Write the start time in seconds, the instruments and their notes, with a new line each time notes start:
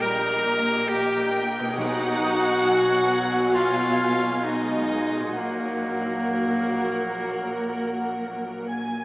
Already playing: double bass section A#1, harp A#2 D#4 A#4 D#5, cello section A#2, violin section D#5
0.00 viola section G3, clarinet A#4, violin section A#5
0.45 viola section A#3
0.89 clarinet G4, violin section G5
1.59 harp B2
1.64 harp D#4
1.68 harp G#4
1.73 clarinet F#4, harp D#5
1.77 double bass section B1, cello section B2, timpani B2, viola section D#4, violin section F#5 G#5
2.66 viola section F#3
3.54 clarinet F4, violin section F5
4.43 viola section G#3, clarinet D#4, violin section D#5
5.20 harp A#2
5.24 harp D#4
5.28 harp F#4
5.33 harp F#5
5.37 double bass section A#1, cello section A#2, viola section F#3, clarinet A#3, violin section A#4 F#5
8.69 violin section G#5